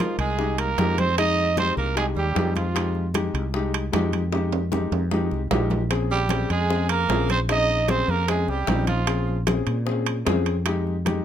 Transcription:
Already playing: F3 F4
0.00 G#3 D#4 A#4, high bongo, high conga
0.18 C2 G#3 G#4, high conga, high timbale
0.38 G#3 D#4 G4, high bongo, high conga
0.58 A#3 A#4, high conga, high timbale
0.78 F2 G#3 D#4 G4, high bongo, low bongo, high conga, high timbale, low timbale
0.98 C4 C5, high conga, high timbale
1.18 G#3 D#4 G#4 D#5, high bongo, high conga, high timbale
1.38 high conga
1.57 G#3 C4 D#4 G4 C5, high bongo, high conga, high timbale, low timbale
1.77 C2 A#3 A#4, high bongo, high conga
1.96 G#3 D#4 G4 G#4, high bongo, high conga, high timbale
2.16 D#2 G3 G4, high bongo, high conga
2.35 F2 G#3 D#4 G4, high bongo, low bongo, high conga, high timbale, low timbale
2.56 F3 F4, high bongo, high conga, high timbale
2.74 G#3 D#4 G4, high bongo, high conga, high timbale
2.95 high conga
3.14 G#3 D#4 G4, high bongo, high conga, high timbale, low timbale
3.34 C2, high conga, high timbale
3.54 G#3 D#4 G4, high bongo, high conga
3.74 high conga, high timbale
3.92 F2 G#3 D#4 G4, high bongo, low bongo, high conga, high timbale, low timbale
4.13 high conga, high timbale
4.32 G#3 D#4 G4, high bongo, high conga, high timbale
4.52 high conga, high timbale
4.71 G#3 D#4 G4, high bongo, high conga, high timbale
4.92 F2, high bongo, high conga, high timbale
5.11 G#3 D#4 G4, high bongo, high conga, low timbale
5.31 C2, high bongo, high conga
5.51 A#1 G#3 D#4 G4, high bongo, low bongo, high conga, low timbale
5.70 high bongo, high conga, low timbale
5.91 C4 C#4 G#4, high bongo, high conga, high timbale
6.10 G3 G4, high conga
6.29 C4 C#4 G#4, high bongo, high conga, high timbale, low timbale
6.49 F2 G#3 G#4, high conga, high timbale
6.69 C4 C#4 G#4, high bongo, high conga
6.89 A#3 A#4, high conga, high timbale
7.09 A#1 C4 C#4 G#4, high bongo, low bongo, high conga, high timbale, low timbale
7.29 C4 C5, high conga, high timbale
7.49 C4 C#4 D#4 G#4 D#5, high bongo, high conga, high timbale
7.68 high conga
7.88 C4 C#4 G#4 C5, high bongo, high conga, high timbale, low timbale
8.08 F2 A#3 A#4, high bongo, high conga
8.28 G#3 C4 C#4 G#4, high bongo, high conga, high timbale
8.48 C2 G3 G4, high bongo, high conga
8.67 A#1 C4 C#4 D#4, high bongo, low bongo, high conga, high timbale, low timbale
8.87 F3 F4, high bongo, high conga, high timbale
9.07 C4 C#4 G#4, high bongo, high conga, high timbale
9.28 high conga
9.47 C4 C#4 G#4, high bongo, high conga, high timbale, low timbale
9.67 A#2, high conga, high timbale
9.86 C4 C#4 G#4, high bongo, high conga
10.06 high conga, high timbale
10.25 F2 C4 C#4 G#4, high bongo, low bongo, high conga, high timbale, low timbale
10.46 high timbale
10.66 G#3 D#4 G4, high bongo, high conga, high timbale
10.87 high conga
11.05 G#3 D#4 G4, high bongo, high conga, high timbale, low timbale

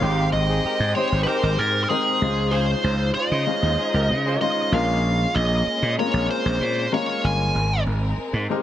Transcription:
Already playing: F5
0.01 G#1 G#3 C4 D#4 G4 C5 G5
0.32 G#1 D#5
0.49 C4 D#4 G#4
0.64 D#4 G4 A#4, muted slap bass stroke
0.80 G#2
0.95 G#3 C4 D#4 G4 G#4 C5 C#5
1.12 G#1
1.23 D#4 G4 A#4 B4
1.28 C5
1.43 G#1
1.59 G#2 A#4
1.84 A#4
1.89 G#3 C4 D#4 G#4 A#4 G5
2.21 C#2 C#3 G#3 C#4 D#4 F4 C5
2.51 D#4 F4 G#4 C5
2.83 C#2 F4 G#4 C5
3.14 F4 G#4 C5 D#5
3.31 C#3
3.46 G#3 C#4 D#4 F4 C5
3.62 D#2
3.78 D#4 F4 G#4
3.94 C#2 D#4 G4 A#4
4.09 C#3
4.26 F4 G#4 C5
4.41 G#3 C#4 D#4 F4 C5 D#5
4.72 A#1 G#3 A#3 C#4 F4 A#4 F5
5.35 A#1 D#5
5.82 A#2
5.98 G#3 A#3 C4 F4 A#4 C#5
6.05 C#4
6.13 A#1
6.30 C5
6.45 A#1
6.61 A#2
6.92 G#3 A#3 C#4 F4 A#4 C#5
7.24 G1 G#5
7.55 G#1 G#3 C4 A#4
7.86 G#1
8.18 muted slap bass stroke
8.33 G#2
8.50 G#3 C4 D#4 G4 A#4

